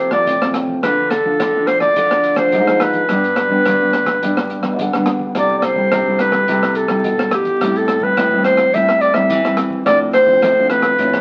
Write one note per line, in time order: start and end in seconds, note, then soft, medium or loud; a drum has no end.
0.00 0.24 C3 medium
0.00 0.12 C5 medium
0.11 0.36 F3 medium
0.11 0.36 A3 medium
0.11 0.36 C4 medium
0.11 0.52 D5 medium
0.11 kick medium
0.11 cross-stick medium
0.27 0.75 A2 medium
0.27 0.81 C3 soft
0.27 kick medium
0.27 closed hi-hat medium
0.42 0.80 F3 medium
0.42 0.80 A3 medium
0.42 0.80 C4 medium
0.42 cross-stick medium
0.42 closed hi-hat soft
0.54 cross-stick medium
0.54 closed hi-hat soft
0.67 kick medium
0.83 1.38 D3 medium
0.83 1.11 F3 soft
0.83 1.11 A3 soft
0.83 1.11 D4 medium
0.83 1.11 B4 medium
0.83 kick medium
0.83 cross-stick medium
0.83 closed hi-hat medium
1.10 1.69 A4 medium
1.10 cross-stick medium
1.10 closed hi-hat soft
1.24 1.49 F3 medium
1.24 1.50 A3 medium
1.24 1.50 D4 medium
1.24 kick medium
1.40 1.94 A2 medium
1.40 1.88 D3 medium
1.40 kick medium
1.40 cross-stick medium
1.40 closed hi-hat medium
1.55 1.93 F3 medium
1.55 1.93 A3 medium
1.55 1.93 D4 medium
1.67 1.80 C5 medium
1.67 cross-stick medium
1.67 closed hi-hat soft
1.80 2.39 D5 medium
1.80 kick medium
1.80 cross-stick medium
1.96 2.51 D3 medium
1.96 2.35 F3 medium
1.96 2.35 A3 medium
1.96 2.35 D4 medium
1.96 kick medium
1.96 closed hi-hat medium
2.11 cross-stick medium
2.11 closed hi-hat soft
2.23 closed hi-hat soft
2.36 2.62 F3 medium
2.36 2.62 A3 medium
2.36 2.62 D4 medium
2.36 2.83 C5 medium
2.36 kick medium
2.36 cross-stick medium
2.36 closed hi-hat soft
2.52 3.01 G#2 medium
2.52 kick medium
2.52 closed hi-hat medium
2.67 3.06 F3 medium
2.67 3.07 D4 medium
2.67 cross-stick medium
2.80 5.08 B4 medium
2.80 cross-stick medium
2.80 closed hi-hat soft
2.93 kick medium
2.93 closed hi-hat soft
3.09 3.64 G2 medium
3.09 3.48 G3 soft
3.09 3.48 B3 medium
3.09 3.48 D4 medium
3.09 kick medium
3.09 cross-stick medium
3.09 closed hi-hat medium
3.24 closed hi-hat soft
3.36 cross-stick medium
3.36 closed hi-hat soft
3.50 3.75 G3 medium
3.50 3.75 B3 medium
3.50 3.75 D4 medium
3.50 kick medium
3.65 4.14 G2 medium
3.65 4.20 D3 medium
3.65 kick medium
3.65 cross-stick medium
3.65 closed hi-hat medium
3.81 4.19 G3 medium
3.81 4.19 B3 medium
3.81 4.19 D4 medium
3.93 cross-stick medium
3.93 closed hi-hat soft
4.06 kick medium
4.06 cross-stick medium
4.06 closed hi-hat soft
4.22 4.76 G2 medium
4.22 4.60 G3 medium
4.22 4.61 B3 medium
4.22 4.61 D4 medium
4.22 kick medium
4.22 closed hi-hat medium
4.37 cross-stick medium
4.50 closed hi-hat soft
4.63 4.88 G3 medium
4.63 4.88 B3 medium
4.63 4.88 D4 medium
4.63 kick medium
4.63 cross-stick medium
4.79 5.33 D3 soft
4.79 kick medium
4.79 closed hi-hat medium
4.93 5.32 G3 medium
4.93 5.32 B3 medium
4.93 5.32 D4 medium
4.93 cross-stick medium
4.93 closed hi-hat soft
5.06 cross-stick medium
5.06 closed hi-hat soft
5.19 kick medium
5.35 5.90 C3 soft
5.35 5.74 G3 medium
5.35 5.74 A3 soft
5.35 5.74 E4 medium
5.35 5.57 D5 medium
5.35 kick medium
5.35 cross-stick medium
5.35 closed hi-hat medium
5.58 5.66 D5 medium
5.58 cross-stick medium
5.58 closed hi-hat soft
5.64 6.20 C5 medium
5.76 6.01 G3 medium
5.76 6.01 A3 medium
5.76 6.01 E4 medium
5.76 kick medium
5.92 6.46 G2 medium
5.92 6.40 C3 medium
5.92 kick medium
5.92 cross-stick medium
5.92 closed hi-hat medium
6.07 6.44 G3 medium
6.07 6.44 A3 medium
6.07 6.45 E4 medium
6.19 6.78 B4 medium
6.19 cross-stick medium
6.19 closed hi-hat soft
6.32 kick medium
6.32 cross-stick medium
6.48 7.02 C3 medium
6.48 6.86 G3 medium
6.48 6.87 A3 medium
6.48 6.87 E4 medium
6.48 kick medium
6.48 closed hi-hat medium
6.63 cross-stick medium
6.63 closed hi-hat soft
6.75 7.35 A4 medium
6.75 closed hi-hat soft
6.88 7.14 G3 medium
6.88 7.14 A3 medium
6.88 7.14 E4 medium
6.88 kick medium
6.88 cross-stick medium
6.88 closed hi-hat soft
7.04 7.58 G2 medium
7.04 7.53 B2 medium
7.04 kick medium
7.04 closed hi-hat medium
7.19 7.57 G3 medium
7.19 7.58 A3 medium
7.19 7.58 E4 medium
7.19 cross-stick medium
7.31 7.79 G4 medium
7.31 cross-stick medium
7.31 closed hi-hat soft
7.45 kick medium
7.45 closed hi-hat soft
7.61 8.15 A2 medium
7.61 7.99 G3 medium
7.61 7.99 C4 soft
7.61 8.00 E4 medium
7.61 kick medium
7.61 cross-stick medium
7.61 closed hi-hat medium
7.76 8.05 A4 medium
7.76 closed hi-hat soft
7.88 cross-stick medium
7.88 closed hi-hat soft
8.01 8.26 G3 medium
8.01 8.27 C4 medium
8.01 8.27 E4 medium
8.01 8.44 B4 loud
8.01 kick medium
8.17 8.66 A2 medium
8.17 8.71 E3 medium
8.17 kick medium
8.17 cross-stick medium
8.17 closed hi-hat medium
8.33 8.70 G3 medium
8.33 8.70 C4 medium
8.33 8.70 E4 medium
8.44 8.76 C5 medium
8.44 cross-stick medium
8.44 closed hi-hat soft
8.57 kick medium
8.57 cross-stick medium
8.57 closed hi-hat soft
8.74 9.28 A2 medium
8.74 9.12 G3 medium
8.74 9.13 C4 medium
8.74 9.13 E4 medium
8.74 9.03 E5 medium
8.74 kick medium
8.74 closed hi-hat medium
8.89 cross-stick medium
9.01 9.16 D5 medium
9.01 closed hi-hat soft
9.14 9.39 G3 medium
9.14 9.40 C4 medium
9.14 9.40 E4 medium
9.14 9.58 E5 medium
9.14 kick medium
9.14 cross-stick medium
9.30 9.85 E3 soft
9.30 kick medium
9.30 closed hi-hat medium
9.45 9.83 G3 medium
9.45 9.83 C4 medium
9.45 9.83 E4 medium
9.45 cross-stick medium
9.45 closed hi-hat soft
9.57 cross-stick medium
9.57 closed hi-hat soft
9.70 kick medium
9.86 10.41 A2 medium
9.86 10.13 F3 soft
9.86 10.14 C4 medium
9.86 10.14 D4 medium
9.86 9.99 D5 loud
9.86 kick medium
9.86 cross-stick medium
9.86 closed hi-hat medium
10.13 10.67 C5 loud
10.13 cross-stick medium
10.13 closed hi-hat soft
10.27 10.52 F3 medium
10.27 10.52 C4 medium
10.27 10.52 D4 medium
10.27 kick medium
10.42 10.97 A2 medium
10.42 kick medium
10.42 cross-stick medium
10.42 closed hi-hat medium
10.59 10.96 F3 medium
10.59 10.96 C4 medium
10.59 10.96 D4 medium
10.70 11.21 B4 medium
10.70 cross-stick medium
10.70 closed hi-hat soft
10.82 kick medium
10.82 cross-stick medium
10.98 11.21 A2 medium
10.98 11.21 F3 medium
10.98 11.21 C4 medium
10.98 11.21 D4 medium
10.98 kick medium
10.98 closed hi-hat medium
11.13 cross-stick medium
11.13 closed hi-hat soft